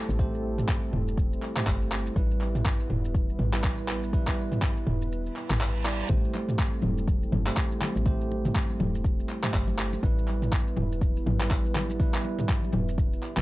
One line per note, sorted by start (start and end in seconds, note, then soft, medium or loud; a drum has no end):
0.00 2.12 G3 medium
0.00 0.17 A3 medium
0.00 2.12 C4 medium
0.00 2.12 E4 medium
0.00 0.17 G4 medium
0.00 2.12 A4 medium
0.00 0.17 C5 medium
0.09 0.62 A1 medium
0.09 shaker medium
0.19 1.53 A3 medium
0.19 1.53 G4 medium
0.19 1.53 C5 loud
0.19 kick loud
0.19 shaker medium
0.34 shaker soft
0.58 mid tom medium
0.58 shaker medium
0.68 kick loud
0.68 clap loud
0.68 shaker medium
0.83 shaker soft
0.93 1.36 E1 medium
0.93 mid tom loud
1.08 shaker medium
1.17 kick loud
1.17 shaker medium
1.33 shaker soft
1.42 clap soft
1.56 2.13 A3 medium
1.56 2.13 G4 medium
1.56 2.13 C5 medium
1.56 clap medium
1.56 mid tom medium
1.56 shaker medium
1.67 2.10 G1 medium
1.67 kick loud
1.67 clap loud
1.67 shaker medium
1.82 shaker soft
1.92 clap medium
2.07 shaker medium
2.15 2.84 A1 medium
2.15 9.99 G3 medium
2.15 3.50 G3 medium
2.15 6.05 B3 medium
2.15 9.99 E4 medium
2.15 3.50 E4 medium
2.15 6.05 B4 medium
2.15 3.50 B4 loud
2.15 kick loud
2.15 shaker medium
2.31 shaker soft
2.41 clap soft
2.55 mid tom loud
2.55 shaker medium
2.65 kick loud
2.65 clap loud
2.65 shaker medium
2.80 shaker soft
2.90 3.33 E1 medium
2.90 mid tom loud
3.05 shaker medium
3.15 kick loud
3.15 shaker medium
3.29 shaker soft
3.39 4.31 A1 medium
3.39 mid tom medium
3.54 4.10 G3 medium
3.54 4.10 E4 medium
3.54 4.10 B4 medium
3.54 clap medium
3.54 shaker medium
3.64 kick loud
3.64 clap loud
3.64 shaker medium
3.79 shaker soft
3.88 clap medium
4.03 shaker medium
4.13 5.47 G3 medium
4.13 5.47 E4 medium
4.13 5.47 B4 loud
4.13 kick loud
4.13 shaker medium
4.27 kick medium
4.27 clap medium
4.27 shaker soft
4.52 mid tom loud
4.52 shaker medium
4.62 kick loud
4.62 clap loud
4.62 shaker medium
4.77 shaker soft
4.87 5.30 E1 medium
4.87 mid tom loud
5.02 shaker medium
5.11 reverse cymbal medium
5.11 shaker medium
5.26 shaker soft
5.36 clap soft
5.50 6.03 A1 medium
5.50 clap medium
5.50 mid tom medium
5.50 shaker medium
5.61 clap loud
5.61 shaker medium
5.76 shaker soft
5.85 6.07 G3 medium
5.85 6.07 E4 medium
5.85 6.07 D5 medium
5.85 clap loud
6.00 shaker medium
6.09 6.26 A1 loud
6.09 7.43 A3 medium
6.09 9.99 C4 medium
6.09 7.43 G4 medium
6.09 9.99 A4 medium
6.09 7.43 C5 loud
6.09 kick loud
6.09 low conga loud
6.09 shaker medium
6.25 shaker soft
6.34 clap soft
6.34 muted conga medium
6.49 mid tom loud
6.49 shaker medium
6.58 kick loud
6.58 clap loud
6.58 muted conga soft
6.58 shaker medium
6.74 shaker soft
6.82 7.26 E1 medium
6.82 mid tom medium
6.82 muted conga medium
6.82 high conga medium
6.98 shaker medium
7.08 kick loud
7.08 muted conga soft
7.08 high conga medium
7.08 shaker medium
7.23 shaker soft
7.32 7.50 G1 loud
7.32 mid tom medium
7.32 high conga loud
7.46 8.03 A3 medium
7.46 8.03 G4 medium
7.46 8.03 C5 medium
7.46 clap loud
7.46 muted conga medium
7.46 shaker medium
7.57 kick loud
7.57 clap loud
7.57 shaker medium
7.72 muted conga soft
7.72 shaker soft
7.81 clap loud
7.81 high conga medium
7.81 low conga medium
7.96 8.49 A1 medium
7.96 muted conga soft
7.96 shaker medium
8.06 9.40 A3 medium
8.06 9.40 G4 medium
8.06 9.40 C5 loud
8.06 kick loud
8.06 low conga medium
8.06 shaker medium
8.21 shaker soft
8.32 muted conga medium
8.45 mid tom medium
8.45 low conga medium
8.45 shaker medium
8.55 kick loud
8.55 clap loud
8.55 shaker medium
8.70 high conga medium
8.70 shaker soft
8.80 9.23 E1 medium
8.80 mid tom medium
8.80 muted conga medium
8.80 high conga medium
8.95 shaker medium
9.04 kick loud
9.04 muted conga soft
9.04 shaker medium
9.20 shaker soft
9.29 clap soft
9.43 10.00 A3 medium
9.43 10.00 G4 medium
9.43 10.00 C5 medium
9.43 clap loud
9.43 mid tom medium
9.43 muted conga soft
9.43 high conga medium
9.43 shaker medium
9.54 9.97 G1 medium
9.54 kick loud
9.54 clap loud
9.54 shaker medium
9.68 muted conga soft
9.68 high conga loud
9.68 shaker soft
9.79 clap loud
9.93 muted conga medium
9.93 shaker medium
10.03 10.71 A1 loud
10.03 13.42 G3 medium
10.03 11.37 G3 medium
10.03 13.42 B3 medium
10.03 13.42 E4 medium
10.03 11.37 E4 medium
10.03 13.42 B4 medium
10.03 11.37 B4 loud
10.03 kick loud
10.03 low conga loud
10.03 shaker medium
10.18 shaker soft
10.28 clap soft
10.28 muted conga soft
10.42 mid tom medium
10.42 shaker medium
10.52 kick loud
10.52 clap loud
10.52 muted conga soft
10.52 shaker medium
10.67 shaker soft
10.77 11.20 E1 medium
10.77 mid tom medium
10.77 muted conga soft
10.77 high conga loud
10.92 shaker medium
11.01 kick loud
11.01 muted conga soft
11.01 high conga medium
11.01 shaker medium
11.17 shaker soft
11.26 12.18 A1 medium
11.26 mid tom medium
11.26 high conga loud
11.40 11.97 G3 medium
11.40 11.97 E4 medium
11.40 11.97 B4 medium
11.40 clap loud
11.40 muted conga soft
11.40 shaker medium
11.51 kick loud
11.51 clap loud
11.51 shaker medium
11.65 muted conga soft
11.65 shaker soft
11.75 clap medium
11.75 high conga medium
11.75 low conga medium
11.90 muted conga medium
11.90 shaker medium
12.00 13.33 G3 medium
12.00 13.33 E4 medium
12.00 13.33 B4 loud
12.00 kick loud
12.00 low conga medium
12.00 shaker medium
12.14 clap medium
12.14 shaker soft
12.25 muted conga medium
12.39 mid tom medium
12.39 low conga medium
12.39 shaker medium
12.49 kick loud
12.49 clap loud
12.49 muted conga soft
12.49 shaker medium
12.63 high conga medium
12.63 shaker soft
12.72 13.17 E1 medium
12.72 mid tom medium
12.72 muted conga medium
12.72 high conga loud
12.89 shaker medium
12.98 kick loud
12.98 muted conga soft
12.98 shaker medium
13.13 shaker soft
13.23 clap soft
13.36 13.42 A1 medium
13.36 13.42 G3 medium
13.36 13.42 E4 medium
13.36 13.42 B4 medium
13.36 clap medium
13.36 mid tom medium
13.36 muted conga soft
13.36 high conga medium
13.36 shaker medium